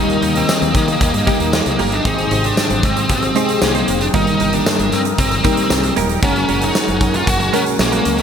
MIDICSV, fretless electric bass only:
0, 0, Header, 1, 2, 480
1, 0, Start_track
1, 0, Key_signature, -3, "major"
1, 0, Tempo, 521739
1, 1890, Time_signature, 4, 2, 24, 8
1, 7565, End_track
2, 0, Start_track
2, 0, Title_t, "Fretless electric bass"
2, 0, Program_c, 0, 35
2, 0, Note_on_c, 0, 39, 106
2, 148, Note_off_c, 0, 39, 0
2, 206, Note_on_c, 0, 39, 101
2, 388, Note_off_c, 0, 39, 0
2, 568, Note_on_c, 0, 39, 100
2, 658, Note_off_c, 0, 39, 0
2, 688, Note_on_c, 0, 51, 98
2, 869, Note_off_c, 0, 51, 0
2, 929, Note_on_c, 0, 39, 102
2, 1019, Note_off_c, 0, 39, 0
2, 1044, Note_on_c, 0, 43, 92
2, 1136, Note_off_c, 0, 43, 0
2, 1288, Note_on_c, 0, 39, 89
2, 1469, Note_off_c, 0, 39, 0
2, 1528, Note_on_c, 0, 36, 95
2, 1618, Note_off_c, 0, 36, 0
2, 1647, Note_on_c, 0, 31, 100
2, 1828, Note_off_c, 0, 31, 0
2, 1887, Note_on_c, 0, 32, 108
2, 2068, Note_off_c, 0, 32, 0
2, 2127, Note_on_c, 0, 32, 101
2, 2308, Note_off_c, 0, 32, 0
2, 2487, Note_on_c, 0, 32, 104
2, 2578, Note_off_c, 0, 32, 0
2, 2607, Note_on_c, 0, 44, 97
2, 2788, Note_off_c, 0, 44, 0
2, 2849, Note_on_c, 0, 32, 98
2, 3029, Note_off_c, 0, 32, 0
2, 3330, Note_on_c, 0, 36, 94
2, 3510, Note_off_c, 0, 36, 0
2, 3570, Note_on_c, 0, 29, 94
2, 3749, Note_off_c, 0, 29, 0
2, 3809, Note_on_c, 0, 31, 116
2, 3989, Note_off_c, 0, 31, 0
2, 4048, Note_on_c, 0, 31, 104
2, 4229, Note_off_c, 0, 31, 0
2, 4408, Note_on_c, 0, 31, 98
2, 4498, Note_off_c, 0, 31, 0
2, 4529, Note_on_c, 0, 43, 103
2, 4709, Note_off_c, 0, 43, 0
2, 4769, Note_on_c, 0, 31, 91
2, 4949, Note_off_c, 0, 31, 0
2, 5249, Note_on_c, 0, 36, 91
2, 5429, Note_off_c, 0, 36, 0
2, 5489, Note_on_c, 0, 27, 106
2, 5669, Note_off_c, 0, 27, 0
2, 5728, Note_on_c, 0, 30, 113
2, 5908, Note_off_c, 0, 30, 0
2, 5970, Note_on_c, 0, 30, 110
2, 6150, Note_off_c, 0, 30, 0
2, 6329, Note_on_c, 0, 30, 107
2, 6419, Note_off_c, 0, 30, 0
2, 6448, Note_on_c, 0, 42, 101
2, 6629, Note_off_c, 0, 42, 0
2, 6692, Note_on_c, 0, 30, 102
2, 6871, Note_off_c, 0, 30, 0
2, 7169, Note_on_c, 0, 34, 98
2, 7349, Note_off_c, 0, 34, 0
2, 7411, Note_on_c, 0, 37, 102
2, 7565, Note_off_c, 0, 37, 0
2, 7565, End_track
0, 0, End_of_file